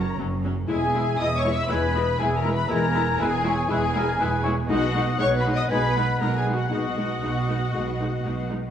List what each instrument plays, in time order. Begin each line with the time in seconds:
Already playing: double bass section F#1, cello section F#2, violin section A#4 A#5, flute section A#4, oboe C#5
0.18 double bass section F#1, cello section F#2, viola section F#3 C#4
0.45 viola section F#3 C#4
0.68 double bass section E1, cello section E2, french horn section G#3 E4, viola section G#3 E4, flute section G#4, violin section G#4 G#5, oboe E5
0.95 viola section G#3 E4
1.19 double bass section E1, cello section E2, viola section G#3 E4, flute section D#5, violin section D#5 D#6
1.36 violin section C#5 C#6, flute section C#5
1.45 viola section G#3 E4
1.52 flute section E5, violin section E5 E6
1.68 double bass section E1, cello section E2, french horn section G#3 E4, viola section G#3 E4, violin section B4 B5, flute section B4, oboe G#5
1.96 viola section G#3 E4, oboe D#5
2.19 double bass section E1, cello section E2, viola section G#3 E4, violin section G#4 G#5, flute section G#4, oboe E5
2.37 violin section A#4 A#5, flute section A#4
2.45 viola section G#3 E4
2.52 violin section B4 B5, flute section B4
2.70 double bass section E1, cello section E2, viola section G#3 E4, french horn section G#3 E4, violin section A#4 A#5, flute section A#4, oboe G#5
2.95 viola section G#3 E4
3.18 double bass section E1, cello section E2, viola section G#3 E4, violin section G#4 G#5, flute section G#4, oboe B4
3.45 viola section G#3 E4, oboe C#5
3.68 double bass section E1, cello section E2, french horn section G#3 E4, viola section G#3 E4, violin section G#4 G#5, flute section G#4, oboe B4
3.95 viola section G#3 E4, oboe A#4
4.19 double bass section E1, cello section E2, viola section G#3 E4, oboe B4
4.43 viola section G#3 E4, oboe C#5
4.69 double bass section B1, cello section B2, french horn section G#3 D#4, viola section G#3 D#4, violin section F#4 F#5, flute section F#4, oboe D#5
4.94 viola section G#3 D#4
5.19 double bass section B1, cello section B2, viola section G#3 D#4, violin section C#5 C#6, flute section C#5, oboe F#5
5.36 violin section B4 B5, flute section B4
5.46 viola section G#3 D#4
5.52 violin section D#5 D#6, flute section D#5
5.69 double bass section B1, cello section B2, viola section G#3 D#4, french horn section G#3 D#4, violin section B4 B5, flute section B4, oboe G#5
5.96 viola section G#3 D#4, oboe F#5
6.20 double bass section B1, cello section B2, viola section G#3 D#4, flute section A#4, violin section A#4 A#5
6.36 violin section G#4 G#5, flute section G#4
6.47 viola section G#3 D#4
6.53 flute section F#4, violin section F#4
6.58 violin section F#5
6.70 double bass section B1, cello section B2, french horn section G#3 D#4, viola section G#3 D#4, flute section F#4, violin section F#4 F#5, oboe D#5
6.98 viola section G#3 D#4
7.22 double bass section B1, cello section B2, viola section G#3 D#4
7.49 viola section G#3 D#4
7.73 double bass section B1, cello section B2, french horn section G#3 D#4, viola section G#3 D#4
8.01 viola section G#3 D#4
8.23 double bass section B1, cello section B2, viola section G#3 D#4
8.50 viola section G#3 D#4